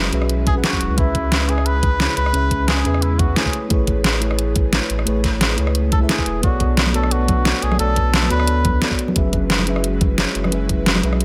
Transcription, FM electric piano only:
Already playing: F#3 C#4 G#4 B4 C#5 E5
0.11 F#3 C#4 G#4 B4
0.15 E5
0.54 F#3 C#4 G#4 B4
0.58 F#5
0.96 C#3 C#4 G#4 B4
1.00 E5
1.47 C#3 C#4 G#4 B4
1.51 E5
1.99 C#3 C#4 G#4 B4 C#5
2.32 C#3 C#4 G#4 B4
2.36 E5
2.83 C#3 C#4 G#4 B4
2.88 E5
3.36 A3 E4 G#4 B4 C#5
3.69 A3 E4 G#4 B4
3.73 C#5
4.20 A3 E4 G#4 B4
4.24 C#5
4.72 A3 E4 G#4 B4 C#5
5.05 A3 E4 G#4 B4
5.09 C#5
5.56 A3 E4 G#4 B4
5.60 C#5
5.99 A3 E4 G#4 B4
6.03 E5
6.41 B3 F#4 A4 C#5
6.46 D5
6.92 B3 F#4 A4 C#5
6.97 D5
7.45 B3 F#4 A4 C#5 D5
7.78 B3 F#4 A4 C#5
7.82 D5
8.29 B3 F#4 A4 C#5
8.33 D5
8.81 B3 F#4 A4 C#5 D5
9.14 F#3 C#4 G#4 B4
9.18 E5
9.65 F#3 C#4 G#4 B4
9.69 E5
10.17 F#3 C#4 G#4 B4 C#5
10.50 F#3 C#4 G#4 B4
10.54 E5
11.01 F#3 C#4 G#4 B4
11.06 E5

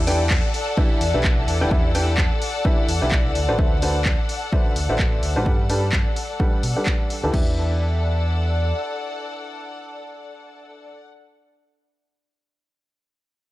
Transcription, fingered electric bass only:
Already playing: E2
1.01 E2
1.14 B1
1.48 E2
1.61 E1
1.71 E2
2.88 E2
3.02 B1
3.35 D2
3.48 A1
3.59 D2
4.76 D2
4.89 A1
5.23 D2
5.36 A1
5.46 G2
6.63 B2
7.24 D2
7.34 E2

